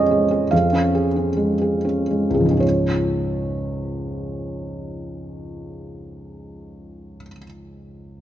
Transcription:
0.00 0.47 F2 soft
0.00 0.11 G#3 soft
0.00 0.55 C#4 soft
0.00 0.31 G#4 soft
0.00 0.54 C5 medium
0.00 0.54 C#5 medium
0.00 0.51 D#5 medium
0.11 0.43 G#3 soft
0.31 0.64 G#4 soft
0.51 2.59 F2 soft
0.51 1.85 F5 medium
0.73 1.07 C#4 soft
0.95 1.29 G#4 soft
1.16 1.52 C#4 soft
1.37 1.75 G#3 soft
1.61 2.00 G#4 soft
1.85 2.25 C#4 soft
2.10 2.44 G#3 soft
2.30 7.16 C#2 soft
2.34 7.20 G#2 soft
2.34 2.61 G#4 soft
2.40 7.26 F3 soft
2.45 7.31 G#3 soft
2.51 7.36 C#4 soft
2.57 7.42 F4 soft
2.57 7.45 C#5 soft

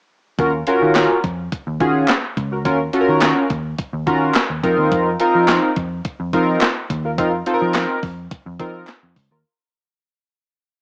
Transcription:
0.39 0.62 D#2 loud
0.39 0.52 C#4 medium
0.39 0.52 F4 medium
0.39 0.52 F#4 medium
0.39 0.52 A#4 loud
0.39 kick loud
0.39 closed hi-hat medium
0.67 1.17 C#4 medium
0.67 1.17 F4 medium
0.67 1.17 F#4 medium
0.67 1.18 A#4 loud
0.67 closed hi-hat medium
0.82 1.05 D#3 loud
0.95 snare loud
0.95 clap medium
0.95 closed hi-hat medium
1.24 1.47 F2 medium
1.24 kick loud
1.24 closed hi-hat medium
1.52 kick loud
1.52 closed hi-hat medium
1.67 1.78 D#2 medium
1.80 2.04 D#3 medium
1.80 2.11 C#4 loud
1.80 2.11 F4 medium
1.80 2.12 F#4 medium
1.80 2.12 G#4 loud
1.80 kick medium
1.80 closed hi-hat medium
2.08 snare loud
2.08 clap medium
2.08 closed hi-hat medium
2.37 2.65 C#2 loud
2.37 kick medium
2.37 closed hi-hat medium
2.52 2.58 F#4 loud
2.52 2.58 A#4 loud
2.65 2.88 D#2 loud
2.65 2.78 C#4 medium
2.65 2.78 F4 medium
2.65 2.79 F#4 medium
2.65 2.79 A#4 medium
2.65 kick loud
2.65 closed hi-hat medium
2.93 3.43 C#4 loud
2.93 3.43 F4 medium
2.93 3.44 F#4 medium
2.93 3.01 A4 medium
2.93 closed hi-hat medium
3.01 3.47 A#4 loud
3.08 3.32 D#3 medium
3.22 snare loud
3.22 clap medium
3.22 closed hi-hat medium
3.50 3.73 D#2 loud
3.50 kick loud
3.50 closed hi-hat medium
3.78 kick loud
3.78 closed hi-hat medium
3.93 4.04 D#2 medium
4.06 4.30 D#3 medium
4.06 4.38 C#4 medium
4.06 4.38 F4 medium
4.06 4.38 F#4 medium
4.06 4.38 A#4 loud
4.06 kick medium
4.06 closed hi-hat medium
4.34 snare medium
4.34 clap medium
4.34 closed hi-hat medium
4.50 4.61 D#2 medium
4.63 4.76 F2 loud
4.63 5.09 C4 medium
4.63 5.09 D#4 medium
4.63 5.09 F4 medium
4.63 5.10 A#4 loud
4.63 kick medium
4.63 closed hi-hat medium
4.78 4.89 D#2 medium
4.92 5.15 F2 loud
4.92 kick loud
4.92 closed hi-hat medium
5.20 5.70 C4 loud
5.20 5.70 D#4 medium
5.20 5.70 F4 medium
5.20 5.70 A#4 loud
5.20 closed hi-hat medium
5.35 5.58 F3 medium
5.48 snare loud
5.48 clap medium
5.48 closed hi-hat medium
5.76 6.00 F2 medium
5.76 kick loud
5.76 closed hi-hat medium
6.05 kick loud
6.05 closed hi-hat medium
6.20 6.31 F2 loud
6.33 6.56 F3 loud
6.33 6.64 C4 medium
6.33 6.64 D#4 medium
6.33 6.65 F4 medium
6.33 6.65 A#4 loud
6.33 kick medium
6.33 closed hi-hat medium
6.61 snare medium
6.61 clap medium
6.61 closed hi-hat medium
6.90 7.18 D#2 loud
6.90 kick medium
6.90 closed hi-hat medium
7.05 7.10 F4 loud
7.05 7.11 A#4 loud
7.18 7.41 F2 loud
7.18 7.31 C4 medium
7.18 7.31 D#4 medium
7.18 7.31 F4 medium
7.18 7.32 A#4 medium
7.18 kick loud
7.18 closed hi-hat medium
7.46 7.96 C4 medium
7.46 7.96 D#4 medium
7.46 7.96 F4 medium
7.46 7.54 A4 medium
7.46 closed hi-hat medium
7.54 8.00 A#4 loud
7.61 7.85 F3 medium
7.74 snare loud
7.74 clap medium
7.74 closed hi-hat medium
8.03 8.26 F2 medium
8.03 kick loud
8.03 open hi-hat medium
8.31 kick loud
8.31 closed hi-hat medium
8.46 8.57 F2 loud
8.59 8.83 F3 medium
8.59 8.91 C4 loud
8.59 8.91 D#4 medium
8.59 8.91 F4 medium
8.59 8.91 A#4 medium
8.59 kick medium
8.59 closed hi-hat medium
8.87 snare medium
8.87 clap medium
8.87 closed hi-hat medium
9.03 9.14 F2 medium
9.16 9.29 C#2 loud
9.16 kick medium
9.16 open hi-hat medium
9.31 9.42 D#2 medium
9.31 9.37 F4 loud
9.31 9.37 A#4 loud

